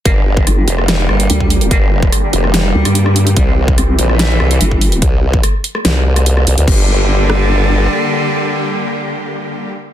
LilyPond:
<<
  \new Staff \with { instrumentName = "Supersaw synth" } { \clef bass \time 4/4 \key g \dorian \tempo 4 = 145 << { g'1~ | g'1~ | g'1 | r1 |
<d g bes g'>1~ | <d g bes g'>1 | } \\ { <d g bes>1~ | <d g bes>1 | <e g c'>1 | r1 |
r1 | r1 | } >> }
  \new Staff \with { instrumentName = "Cello" } { \clef bass \time 4/4 \key g \dorian bes16 d16 d16 d16 r16 d16 d16 g2 r16 | bes16 d16 d16 d16 r16 d16 d16 g2 r16 | g16 c16 c16 c16 r16 c16 c16 e2 r16 | r1 |
d1~ | d1 | }
  \new Staff \with { instrumentName = "Wobble bass" } { \clef bass \time 4/4 \key g \dorian r4 g,,8 r4. d,4 | r2 r8 d,16 g,4~ g,16 | r4 c,8 r4. g,,4 | r1 |
r1 | r1 | }
  \new Staff \with { instrumentName = "Wobble bass" } { \clef bass \time 4/4 \key g \dorian g,,4 r8 f,,4 g,,8 r4 | g,,4 r8 f,,4 r4. | c,4 r8 bes,,4 c,8 r4 | c,4 r4 c,4. c,16 d,16 |
g,,2. r4 | r1 | }
  \new DrumStaff \with { instrumentName = "Drums" } \drummode { \time 4/4 <hh bd>8. bd16 <hh ss>8 hh16 ss16 <hh sn>8 ss16 hh16 hh16 bd16 hho16 hh16 | <hh bd>8. bd16 <hh ss>8 hh16 ss16 <hh sn>8. <hh ss>16 hh16 ss16 hho16 hh16 | <hh bd>8. bd16 <hh ss>8 hh16 ss16 <hh sn>8 ss16 hh16 hh16 bd16 hho16 hh16 | <hh bd>8. bd16 <hh ss>8 hh16 ss16 <hh sn>8. <hh ss>16 hh16 ss16 hho16 hh16 |
<cymc bd>4 r8 ss8 r4 r4 | r4 r4 r4 r4 | }
>>